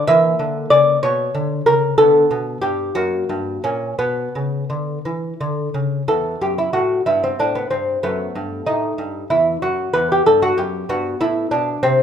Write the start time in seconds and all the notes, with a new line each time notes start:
0.07 E3 A#3 E5
0.39 D3
0.70 C#3 D5
1.03 B2 C#5
1.35 D3
1.66 C#3 A#4
1.98 D3 B3 A4
2.31 B2
2.61 G2 G4
2.95 F#2 A#3 F#4
3.29 G2
3.64 A#2 C#4
3.99 B2 B3
4.35 C#3
4.70 D3
5.05 E3
5.41 D3
5.74 C#3
6.08 E2 B3 A4
6.41 F#2 G4
6.58 E4
6.73 A2 F#4
7.06 G2 B3 E4
7.24 C4
7.39 A2 D4
7.55 B3
7.70 G2 C4
8.03 F#2 A3 B3
8.35 G2
8.66 A2 D#4
8.98 G2
9.30 E2 E4
9.62 F#2 F#4
9.93 E2 B3 B4
10.12 G4
10.26 G2 A4
10.42 F#4
10.58 F#2 G4
10.89 G2 B3 F#4
11.21 A2 E4
11.51 B2 D4
11.83 C3 C4